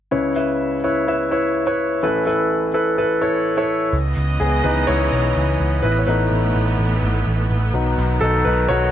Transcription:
0.11 1.99 C#2 medium
0.11 1.99 C#3 medium
0.11 0.32 E4 medium
0.11 0.32 B4 medium
0.11 0.32 C#5 medium
0.36 0.76 E4 medium
0.36 0.76 B4 medium
0.36 0.76 E5 medium
0.84 1.04 E4 medium
0.84 1.04 B4 medium
0.84 1.04 C#5 medium
1.08 1.28 E4 medium
1.08 1.28 B4 medium
1.08 1.28 E5 medium
1.31 1.62 E4 medium
1.31 1.62 B4 medium
1.31 1.62 C#5 medium
1.67 1.97 E4 medium
1.67 1.97 B4 medium
1.67 1.97 C#5 medium
2.03 3.90 A1 medium
2.03 3.90 A2 medium
2.03 2.23 E4 medium
2.03 2.23 A4 medium
2.03 2.23 B4 medium
2.26 2.67 E4 medium
2.26 2.67 A4 medium
2.26 2.67 B4 medium
2.74 2.94 E4 medium
2.74 2.94 A4 medium
2.74 2.95 B4 medium
2.98 3.18 E4 medium
2.98 3.18 A4 medium
2.98 3.18 B4 medium
3.21 3.52 E4 medium
3.21 3.52 A4 medium
3.21 3.52 C#5 medium
3.57 3.88 E4 medium
3.57 3.88 A4 medium
3.57 3.88 C#5 medium
3.93 4.13 C#2 medium
3.93 5.82 C#3 medium
3.93 5.82 E3 medium
3.93 5.82 G#3 medium
3.93 8.91 B3 medium
3.93 5.82 D#5 medium
4.17 4.37 C#2 medium
4.40 4.61 C#2 medium
4.40 4.63 B3 medium
4.40 4.63 G#4 medium
4.64 4.84 C#2 medium
4.64 4.96 E3 soft
4.64 4.97 B3 soft
4.64 4.88 D#4 medium
4.64 4.86 B4 medium
4.87 5.08 C#2 medium
4.87 5.80 E4 medium
4.87 5.86 C#5 medium
5.13 5.32 B1 medium
5.36 5.56 C#2 medium
5.60 5.80 C#2 medium
5.82 6.03 A1 medium
5.82 7.73 E3 medium
5.82 7.73 A3 medium
5.82 6.00 E4 medium
5.82 5.99 B4 medium
5.99 6.07 C#5 soft
6.07 6.27 A1 medium
6.07 6.39 A3 soft
6.07 6.40 B3 soft
6.07 7.47 D#4 medium
6.07 6.40 E4 medium
6.07 7.46 B4 medium
6.31 6.51 A1 medium
6.55 6.75 A1 medium
6.79 6.99 A1 medium
7.03 7.22 G#1 medium
7.27 7.46 A1 medium
7.50 7.70 A1 medium
7.74 7.94 B1 medium
7.74 8.91 D#3 medium
7.74 8.06 F#3 soft
7.74 8.91 F#3 medium
7.74 8.06 B3 soft
7.74 8.07 D#4 soft
7.98 8.18 B1 medium
8.21 8.42 B1 medium
8.21 8.45 D#4 medium
8.21 8.46 A4 medium
8.45 8.66 B1 medium
8.45 8.69 D#4 medium
8.45 8.70 B4 medium
8.69 8.89 B1 medium
8.69 8.91 F#4 medium
8.69 8.91 C#5 medium

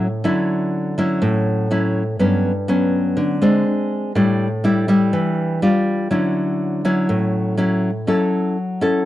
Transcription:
0.00 0.22 A2 medium
0.24 1.19 D3 medium
0.24 0.94 F#3 soft
0.24 0.94 C#4 medium
0.24 0.94 E4 medium
0.98 1.67 F#3 medium
0.98 1.67 C#4 medium
0.98 1.67 E4 medium
1.22 2.17 A2 medium
1.71 2.02 F#3 medium
1.71 2.02 C#4 soft
1.71 2.03 E4 medium
2.19 3.15 G2 medium
2.19 2.51 F#3 soft
2.19 2.51 B3 soft
2.19 2.51 C#4 medium
2.68 3.38 F#3 medium
2.68 3.38 B3 medium
2.68 3.38 C#4 medium
3.17 3.64 D3 medium
3.42 4.11 G#3 medium
3.42 4.12 C4 medium
3.42 4.12 D4 medium
4.15 5.11 A2 medium
4.15 4.47 G3 medium
4.15 4.47 D4 soft
4.15 4.47 E4 medium
4.64 4.85 G3 medium
4.64 4.85 D4 medium
4.64 4.85 E4 medium
4.88 5.58 G3 medium
4.88 5.58 D4 medium
4.88 5.58 E4 medium
5.13 5.60 E3 medium
5.62 6.09 G3 medium
5.62 6.10 D4 medium
5.62 6.10 F4 medium
6.11 7.07 D3 medium
6.11 6.80 F#3 soft
6.11 6.81 C#4 soft
6.11 6.81 E4 medium
6.85 7.54 F#3 medium
6.85 7.54 C#4 medium
6.85 7.55 E4 medium
7.09 8.05 A2 medium
7.57 7.89 F#3 medium
7.57 7.90 C#4 soft
7.57 7.90 E4 medium
8.07 9.03 F#3 medium
8.07 8.56 C#4 soft
8.07 8.56 E4 soft
8.07 8.57 A4 medium
8.81 9.05 C#4 medium
8.81 9.05 E4 medium
8.81 9.05 A4 medium

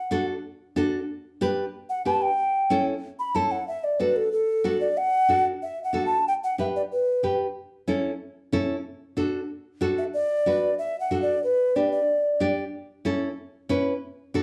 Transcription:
0.00 0.26 F#5 loud
0.11 0.34 D4 medium
0.11 0.34 F#4 medium
0.11 0.35 A4 medium
0.76 0.99 D4 medium
0.76 0.99 F#4 medium
0.76 1.00 A4 medium
1.41 1.64 D4 medium
1.41 1.64 G4 medium
1.41 1.64 B4 medium
1.90 2.05 F#5 loud
2.05 2.28 D4 medium
2.05 2.28 G4 medium
2.05 2.29 B4 medium
2.05 2.23 A5 loud
2.22 2.85 G5 loud
2.70 2.93 C#4 medium
2.70 2.93 E4 medium
2.70 2.93 A4 medium
3.19 3.37 B5 loud
3.34 3.57 C#4 medium
3.34 3.58 E4 medium
3.34 3.58 A4 medium
3.34 3.53 A5 medium
3.51 3.67 F#5 medium
3.68 3.85 E5 loud
3.84 4.01 D5 medium
4.00 4.22 D4 medium
4.00 4.23 F#4 medium
4.00 4.23 A4 medium
4.00 4.18 B4 medium
4.16 4.32 A4 medium
4.32 4.79 A4 loud
4.64 4.87 D4 medium
4.64 4.87 F#4 medium
4.64 4.87 A4 medium
4.81 4.99 D5 medium
4.97 5.46 F#5 loud
5.29 5.51 D4 medium
5.29 5.52 F#4 medium
5.29 5.52 A4 medium
5.63 5.82 E5 medium
5.84 6.04 F#5 medium
5.93 6.16 D4 medium
5.93 6.16 F#4 medium
5.93 6.16 A4 medium
6.06 6.25 A5 loud
6.28 6.34 G5 loud
6.44 6.58 F#5 medium
6.58 6.81 D4 medium
6.58 6.81 G4 medium
6.58 6.81 B4 medium
6.58 6.66 E5 medium
6.76 6.82 D5 medium
6.92 7.37 B4 medium
7.23 7.46 D4 medium
7.23 7.46 G4 medium
7.23 7.46 B4 medium
7.88 8.10 C#4 medium
7.88 8.11 E4 medium
7.88 8.11 A4 medium
8.52 8.75 C#4 medium
8.52 8.75 E4 medium
8.52 8.75 A4 medium
9.17 9.40 D4 medium
9.17 9.40 F#4 medium
9.17 9.40 A4 medium
9.81 10.04 D4 medium
9.81 10.04 F#4 medium
9.81 10.04 A4 medium
9.98 10.04 E5 medium
10.14 10.75 D5 loud
10.46 10.69 D4 medium
10.46 10.69 F#4 medium
10.46 10.70 B4 medium
10.79 10.99 E5 loud
11.00 11.20 F#5 medium
11.11 11.34 D4 medium
11.11 11.34 F#4 medium
11.11 11.34 A4 medium
11.22 11.42 D5 medium
11.44 11.77 B4 loud
11.76 11.99 D4 medium
11.76 11.99 G4 medium
11.76 11.99 B4 medium
11.76 11.91 D5 medium
11.92 12.53 D5 medium
12.40 12.63 D4 medium
12.40 12.63 G4 medium
12.40 12.64 D5 medium
13.05 13.28 C#4 medium
13.05 13.28 E4 medium
13.05 13.28 A4 medium
13.69 13.92 C#4 medium
13.69 13.93 E4 medium
13.69 13.93 B4 medium
14.34 14.43 D4 medium
14.34 14.43 F#4 medium
14.34 14.43 A4 medium

